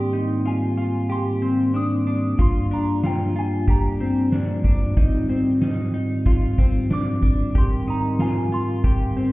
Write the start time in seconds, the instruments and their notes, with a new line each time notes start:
Already playing: tonewheel organ G#2 D#3 G3 A#3 C4, clean electric guitar G4, synth bell C6
0.13 clean electric guitar D#4
0.45 clean electric guitar F4, synth bell G#5
0.77 clean electric guitar F4
1.10 clean electric guitar G4, synth bell C6
1.42 clean electric guitar C4
1.74 clean electric guitar D4, synth bell D#6
2.07 clean electric guitar D4
2.38 tonewheel organ G2 G3 D4 F4, clean electric guitar F4, synth bell C6, kick, closed hi-hat
2.71 clean electric guitar D4, synth bell A#5
3.03 clean electric guitar F4, synth bell G5, snare, closed hi-hat
3.36 clean electric guitar F4, synth bell G#5
3.68 clean electric guitar G4, synth bell A#5, kick, closed hi-hat
4.00 clean electric guitar C4
4.32 clean electric guitar D4, snare, closed hi-hat
4.64 clean electric guitar D4, kick
4.96 tonewheel organ G#2 D#3 C4, clean electric guitar D#4, kick, closed hi-hat
5.29 clean electric guitar C4
5.61 clean electric guitar D#4, snare, closed hi-hat
5.94 clean electric guitar D#4
6.26 clean electric guitar F4, kick, closed hi-hat
6.58 clean electric guitar C4, kick
6.90 clean electric guitar D4, synth bell D6, snare, closed hi-hat
7.23 clean electric guitar D4, kick
7.55 clean electric guitar G4, tonewheel organ A#4, synth bell C6, kick, closed hi-hat
7.88 clean electric guitar D#4, synth bell A#5
8.19 clean electric guitar F4, synth bell G#5, snare, closed hi-hat
8.52 clean electric guitar F4, synth bell C6
8.84 clean electric guitar G4, kick, closed hi-hat
9.17 clean electric guitar C4